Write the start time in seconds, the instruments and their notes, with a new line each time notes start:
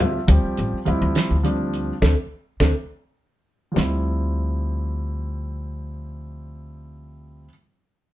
Already playing: upright bass D2, grand piano F3 G3 C4 F4
0.00 grand piano E5, closed hi-hat, low conga
0.27 upright bass D2, grand piano F3 G3 C4 G4, kick, closed hi-hat
0.43 muted upright bass stroke
0.57 upright bass A1, closed hi-hat
0.73 muted upright bass stroke
0.85 upright bass D2, grand piano F3 G3 C4 E4, closed hi-hat
1.02 upright bass D2
1.15 snare, closed hi-hat
1.30 upright bass D2
1.43 grand piano F3 G3 C4 D4, closed hi-hat
1.74 closed hi-hat
2.02 upright bass D2, grand piano A3 C4 D4, kick, snare
2.60 upright bass D2, grand piano A3 C4 D4, kick, snare
3.72 grand piano F3 G3
3.76 upright bass D2, grand piano C4 E4, snare, floor tom